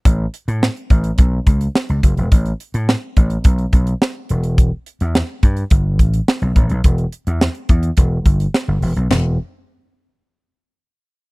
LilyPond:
<<
  \new Staff \with { instrumentName = "Slap bass" } { \clef bass \time 4/4 \key e \dorian \tempo 4 = 106 a,,8 r16 a,8 r16 a,,8 b,,8 cis,8 r16 cis,16 fis,,16 e,,16 | a,,8 r16 a,8 r16 a,,8 b,,8 b,,8 r8 e,,8~ | e,,8 r16 e,8 r16 g,8 g,,8 a,,8 r16 b,,16 a,,16 b,,16 | e,,8 r16 e,8 r16 e,8 e,,8 g,,8 r16 g,,16 e,,16 b,,16 |
e,,8 r2. r8 | }
  \new DrumStaff \with { instrumentName = "Drums" } \drummode { \time 4/4 <hh bd>8 hh16 hh16 sn16 hh16 <hh bd>16 hh16 <hh bd>8 <hh bd>16 hh16 sn16 hh16 <hh bd>16 hh16 | <hh bd>16 hh16 hh16 hh16 sn8 <hh bd>16 hh16 <hh bd>16 hh16 <hh bd>16 hh16 sn8 hh16 hh16 | <hh bd>8 hh16 hh16 sn8 <hh bd>16 hh16 <hh bd>8 <hh bd>16 hh16 sn16 hh16 <hh bd>16 hh16 | <hh bd>16 hh16 hh16 hh16 sn16 hh16 <hh bd>16 hh16 <hh bd>8 <hh bd>16 hh16 sn8 hho16 hh16 |
<cymc sn tomfh>4 r4 r4 r4 | }
>>